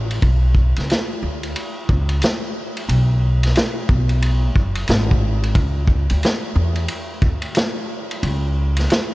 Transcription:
Already playing: upright bass A1
0.11 ride
0.22 upright bass B1, kick, ride
0.55 kick
0.76 upright bass C#2, snare, ride
0.90 snare, hi-hat pedal, ride
1.23 upright bass D2
1.43 ride
1.56 ride
1.89 upright bass C#2, kick
2.09 ride
2.22 snare, hi-hat pedal, ride
2.77 ride
2.89 upright bass B1, ride
3.43 snare, ride
3.55 snare, hi-hat pedal, ride
3.89 upright bass B1, kick
4.09 ride
4.22 ride
4.56 upright bass F#1, kick
4.75 ride
4.88 upright bass G#1, snare, hi-hat pedal, ride
5.11 kick
5.43 ride
5.55 upright bass C#2, kick, ride
5.87 kick
6.10 upright bass D2, ride
6.23 snare, hi-hat pedal, ride
6.55 upright bass E2
6.76 ride
6.88 ride
7.22 upright bass D2, kick
7.42 ride
7.55 snare, hi-hat pedal, ride
8.11 ride
8.23 upright bass C#2, ride
8.77 snare, ride
8.90 snare, hi-hat pedal, ride

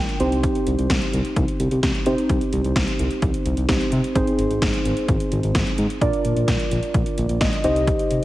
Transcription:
Already playing: synth keys A#3 D4 F4 A#4 G5
0.09 closed hi-hat
0.20 analog synth bass C2, synth keys C4 D#4 G4 C5, closed hi-hat
0.32 closed hi-hat
0.43 kick, closed hi-hat
0.55 closed hi-hat
0.67 analog synth bass C2, closed hi-hat
0.78 analog synth bass C2, closed hi-hat
0.90 analog synth bass C2, kick, snare, closed hi-hat
1.02 closed hi-hat
1.13 analog synth bass C2, closed hi-hat
1.25 closed hi-hat
1.36 analog synth bass C2, kick, closed hi-hat
1.48 closed hi-hat
1.60 analog synth bass C2, closed hi-hat
1.71 analog synth bass C2, closed hi-hat
1.83 analog synth bass C2, kick, snare, closed hi-hat
1.95 closed hi-hat
2.06 analog synth bass C3, synth keys C4 D#4 G4 C5, closed hi-hat
2.18 closed hi-hat
2.29 analog synth bass C2, kick, closed hi-hat
2.41 closed hi-hat
2.53 analog synth bass C2, closed hi-hat
2.64 analog synth bass C2, closed hi-hat
2.76 analog synth bass C2, kick, snare, closed hi-hat
2.88 closed hi-hat
2.99 analog synth bass C2, closed hi-hat
3.11 closed hi-hat
3.22 analog synth bass C2, kick, closed hi-hat
3.34 closed hi-hat
3.46 analog synth bass C2, closed hi-hat
3.57 analog synth bass C2, closed hi-hat
3.69 analog synth bass C2, synth keys C4 D#4 G4 C5, kick, snare, closed hi-hat
3.81 closed hi-hat
3.92 analog synth bass C3, closed hi-hat
4.04 closed hi-hat
4.15 analog synth bass G#1, synth keys C4 D#4 G#4 C5, kick, closed hi-hat
4.27 closed hi-hat
4.39 analog synth bass G#1, closed hi-hat
4.50 analog synth bass G#1, closed hi-hat
4.62 analog synth bass G#1, kick, snare, closed hi-hat
4.74 closed hi-hat
4.85 analog synth bass G#1, closed hi-hat
4.97 closed hi-hat
5.08 analog synth bass G#1, kick, closed hi-hat
5.20 closed hi-hat
5.32 analog synth bass G#1, closed hi-hat
5.43 analog synth bass G#1, closed hi-hat
5.55 analog synth bass G#1, kick, snare, closed hi-hat
5.67 closed hi-hat
5.78 analog synth bass G#2, closed hi-hat
5.90 closed hi-hat
6.01 analog synth bass A#1, synth keys D4 F4 A#4 D5, kick, closed hi-hat
6.13 closed hi-hat
6.25 analog synth bass A#1, closed hi-hat
6.36 analog synth bass A#1, closed hi-hat
6.48 analog synth bass A#1, kick, snare, closed hi-hat
6.60 closed hi-hat
6.71 analog synth bass A#1, closed hi-hat
6.83 closed hi-hat
6.94 analog synth bass A#1, kick, closed hi-hat
7.06 closed hi-hat
7.18 analog synth bass A#1, closed hi-hat
7.29 analog synth bass A#1, closed hi-hat
7.41 analog synth bass A#1, synth keys D#5, kick, snare, closed hi-hat
7.53 closed hi-hat
7.64 analog synth bass C2, synth keys D#4 G4 C5 D#5, closed hi-hat
7.76 closed hi-hat
7.87 kick, closed hi-hat
7.99 closed hi-hat
8.11 analog synth bass C2, closed hi-hat

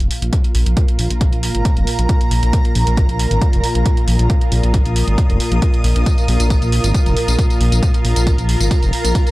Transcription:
Already playing: synth drone A#2, ambient pad F4 A#4
0.00 detuned saw bass F1, closed hi-hat
0.11 open hi-hat
0.22 detuned saw bass A#1, closed hi-hat
0.28 ambient pad A#5
0.33 kick, closed hi-hat
0.44 closed hi-hat
0.55 detuned saw bass A#1, open hi-hat
0.66 detuned saw bass A#1, closed hi-hat
0.77 kick, closed hi-hat
0.88 closed hi-hat
0.99 detuned saw bass A#1, open hi-hat
1.11 detuned saw bass A#1, closed hi-hat
1.21 kick, closed hi-hat
1.33 detuned saw bass A#1, closed hi-hat
1.43 open hi-hat
1.55 detuned saw bass G#1, closed hi-hat
1.65 kick, closed hi-hat
1.77 detuned saw bass F1, closed hi-hat
1.87 open hi-hat
1.99 detuned saw bass A#1, closed hi-hat
2.09 kick, closed hi-hat
2.21 closed hi-hat
2.31 detuned saw bass A#1, open hi-hat
2.43 detuned saw bass A#1, closed hi-hat
2.53 kick, closed hi-hat
2.65 closed hi-hat
2.75 detuned saw bass A#1, open hi-hat
2.87 detuned saw bass A#1, closed hi-hat
2.97 kick, closed hi-hat
3.09 detuned saw bass A#1, closed hi-hat
3.19 open hi-hat
3.31 detuned saw bass G#1, closed hi-hat
3.42 kick, closed hi-hat
3.53 detuned saw bass F1, closed hi-hat
3.64 open hi-hat
3.75 detuned saw bass A#1, closed hi-hat
3.82 ambient pad D#6
3.86 kick, closed hi-hat
3.97 closed hi-hat
4.08 detuned saw bass A#1, open hi-hat
4.19 detuned saw bass A#1, closed hi-hat
4.30 kick, closed hi-hat
4.41 closed hi-hat
4.52 detuned saw bass A#1, open hi-hat
4.63 detuned saw bass A#1, closed hi-hat
4.74 kick, closed hi-hat
4.86 detuned saw bass A#1, closed hi-hat
4.96 open hi-hat
5.08 detuned saw bass G#1, closed hi-hat
5.18 kick, closed hi-hat
5.30 detuned saw bass F1, closed hi-hat
5.40 open hi-hat
5.52 detuned saw bass A#1, closed hi-hat
5.62 kick, closed hi-hat
5.74 closed hi-hat
5.84 detuned saw bass A#1, open hi-hat
5.96 detuned saw bass A#1, closed hi-hat
6.06 kick, closed hi-hat, tambourine
6.18 closed hi-hat, tambourine
6.28 detuned saw bass A#1, open hi-hat
6.40 detuned saw bass A#1, closed hi-hat, tambourine
6.50 kick, closed hi-hat, tambourine
6.62 detuned saw bass A#1, closed hi-hat, tambourine
6.72 open hi-hat
6.84 detuned saw bass G#1, closed hi-hat, tambourine
6.94 kick, closed hi-hat, tambourine
7.06 detuned saw bass F1, closed hi-hat, tambourine
7.17 open hi-hat
7.28 detuned saw bass A#1, closed hi-hat, tambourine
7.34 ambient pad A#5
7.39 kick, closed hi-hat, tambourine
7.50 closed hi-hat, tambourine
7.61 detuned saw bass A#1, open hi-hat
7.72 detuned saw bass A#1, closed hi-hat, tambourine
7.83 kick, closed hi-hat, tambourine
7.94 closed hi-hat, tambourine
8.05 detuned saw bass A#1, open hi-hat
8.16 detuned saw bass A#1, closed hi-hat, tambourine
8.27 kick, closed hi-hat, tambourine
8.38 detuned saw bass A#1, closed hi-hat, tambourine
8.49 open hi-hat
8.60 detuned saw bass G#1, closed hi-hat, tambourine
8.71 kick, closed hi-hat, tambourine
8.83 detuned saw bass F1, closed hi-hat, tambourine
8.93 open hi-hat
9.05 detuned saw bass A#1, closed hi-hat, tambourine
9.15 kick, closed hi-hat, tambourine
9.27 closed hi-hat, tambourine

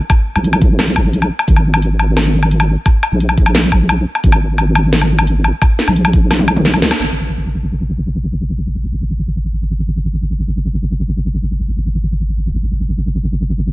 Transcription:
0.10 kick, closed hi-hat, low woodblock
0.36 wobble bass A#1, closed hi-hat, low woodblock
0.44 closed hi-hat
0.53 low woodblock
0.62 kick, closed hi-hat
0.79 snare, closed hi-hat, low woodblock
0.82 closed hi-hat
0.85 closed hi-hat
0.96 kick, low woodblock
1.13 closed hi-hat
1.22 low woodblock
1.39 low woodblock
1.48 wobble bass G#1, kick, closed hi-hat
1.56 low woodblock
1.74 low woodblock
1.82 closed hi-hat
1.99 low woodblock
2.17 snare, closed hi-hat, low woodblock
2.43 low woodblock
2.51 closed hi-hat
2.60 low woodblock
2.86 kick, closed hi-hat, low woodblock
3.03 low woodblock
3.12 wobble bass A#1
3.20 closed hi-hat
3.29 low woodblock
3.38 kick
3.46 low woodblock
3.55 snare, closed hi-hat
3.72 kick, low woodblock
3.89 closed hi-hat, low woodblock
4.15 low woodblock
4.24 wobble bass G#1, kick, closed hi-hat
4.32 low woodblock
4.58 closed hi-hat, low woodblock
4.75 low woodblock
4.93 snare, closed hi-hat
5.01 low woodblock
5.19 low woodblock
5.27 closed hi-hat
5.44 low woodblock
5.62 kick, closed hi-hat, low woodblock
5.79 snare
5.88 wobble bass A#1, low woodblock
5.96 closed hi-hat
6.05 low woodblock
6.13 kick, closed hi-hat
6.31 snare, closed hi-hat, low woodblock
6.39 high tom
6.48 low woodblock
6.57 closed hi-hat, mid tom
6.65 snare, closed hi-hat
6.74 low woodblock
6.82 wobble bass C#2, snare
6.91 snare, low woodblock
7.00 wobble bass G#1
12.51 wobble bass G#1

